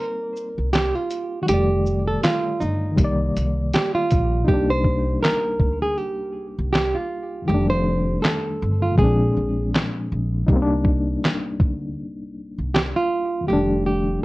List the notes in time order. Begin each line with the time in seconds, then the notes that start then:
Already playing: G3 A#3 C4 D#4
0.00 A#4
0.36 shaker
0.58 C2
0.73 G4, snare, clap, closed hi-hat
0.95 F4
1.10 closed hi-hat, shaker
1.42 D#3 F#4
1.46 F1 G3 A3 G4, closed hi-hat
1.54 D5
1.86 shaker
2.08 A4
2.24 F4, snare, clap, closed hi-hat
2.60 G1 D#4, shaker
2.92 D#3
2.96 C2 G3 A#3, kick, closed hi-hat
3.04 D5
3.37 C2, closed hi-hat, shaker
3.74 G4, snare, clap, closed hi-hat
3.95 F4
4.10 A#1, kick, closed hi-hat, shaker
4.42 C2 D#4
4.47 C2 G3 A#3 G4, kick
4.54 D4
4.70 C5
4.84 kick
5.22 A#4, snare, clap
5.60 D2, kick
5.82 G#4
5.98 G4
6.58 C2
6.73 G4, snare, clap
6.95 F4
7.42 F2 D#3
7.48 F1 G3 A3 G4
7.54 D4
7.70 C5
8.22 A4, snare, clap
8.62 G1
8.82 F4
8.92 A#2 F3
8.98 A#1 G#3 C4 G#4, kick
9.04 D4
9.37 A#1
9.75 snare, clap
10.12 A#1
10.44 C2 D#4
10.48 C2 G3, kick
10.53 A#3 C4
10.62 D4
10.85 kick
11.25 snare, clap
11.60 D2, kick
12.58 C2
12.74 G4, snare, clap
12.96 F4
13.41 F2 D#3
13.47 F1 G3 A3 G4
13.53 D4
13.86 G4